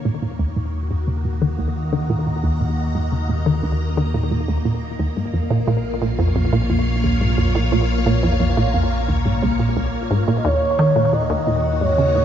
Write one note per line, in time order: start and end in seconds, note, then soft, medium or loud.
0.00 4.96 D#2 medium
0.00 5.00 D#3 medium
0.00 12.25 A#3 medium
0.00 0.73 C#5 medium
0.00 0.44 F5 medium
0.05 0.14 A#2 medium
0.22 0.31 A#2 medium
0.39 0.48 D#2 loud
0.56 0.61 A#2 medium
0.68 5.00 F#4 medium
0.91 0.99 G#2 medium
1.08 1.16 C#3 medium
1.25 1.30 A#2 medium
1.42 1.50 D#3 medium
1.42 6.35 A#5 medium
1.48 6.73 D#5 medium
1.59 1.67 D#2 medium
1.93 2.05 D#3 loud
2.10 2.18 A#2 loud
2.27 2.35 A#2 medium
2.44 2.52 D#2 medium
2.61 2.66 A#2 medium
2.95 3.03 G#2 medium
3.12 3.20 C#3 medium
3.29 3.34 A#2 medium
3.46 3.54 D#3 loud
3.63 3.71 D#2 loud
3.97 4.10 D#3 loud
4.14 4.23 A#2 medium
4.31 4.40 A#2 medium
4.48 4.57 D#2 medium
4.65 4.70 A#2 medium
4.99 10.42 A#1 medium
4.99 5.08 D#2 medium
4.99 10.45 A#2 medium
5.17 5.25 G#2 medium
5.34 5.39 F2 medium
5.34 10.45 F4 medium
5.34 11.28 F5 medium
5.51 5.59 A#2 medium
5.68 5.76 A#2 loud
6.02 6.14 A#2 loud
6.02 12.25 C#5 medium
6.19 6.27 F2 loud
6.36 6.44 F2 medium
6.53 6.61 A#2 loud
6.70 6.75 F2 medium
7.04 7.12 D#2 medium
7.21 7.29 G#2 medium
7.38 7.43 F2 medium
7.55 7.64 A#2 loud
7.72 7.81 A#2 loud
8.06 8.19 A#2 loud
8.23 8.32 F2 loud
8.40 8.49 F2 medium
8.57 8.66 A#2 loud
8.74 8.79 F2 medium
9.08 9.17 D#2 medium
9.26 9.34 G#2 medium
9.43 9.51 C#2 loud
9.60 9.68 A#2 medium
9.77 9.85 C#2 medium
10.11 10.19 G#2 loud
10.28 10.36 A#2 loud
10.38 10.47 D#5 medium
10.45 10.53 D#2 loud
10.45 12.25 D#2 medium
10.45 12.25 D#3 medium
10.45 11.15 C#5 loud
10.78 10.91 D#3 loud
10.78 12.25 F#4 medium
10.96 11.04 A#2 medium
11.13 11.21 A#2 medium
11.13 11.74 D#5 loud
11.30 11.38 D#2 loud
11.47 11.52 A#2 medium
11.74 11.83 D#5 medium
11.74 12.25 A#5 medium
11.81 11.90 G#2 medium
11.81 12.25 C#5 loud
11.98 12.07 C#3 medium
11.98 12.25 D#5 medium
12.15 12.20 A#2 medium